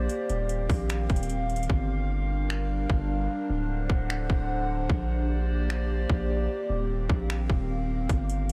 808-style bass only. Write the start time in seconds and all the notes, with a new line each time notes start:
0.30 D#1
0.69 A#1
1.10 D#1
1.70 G1
2.90 G1
3.50 D1
3.90 D1
4.30 D1
4.89 A#1
6.10 A#1
6.69 D#1
7.09 A#1
7.50 D#1
8.09 G1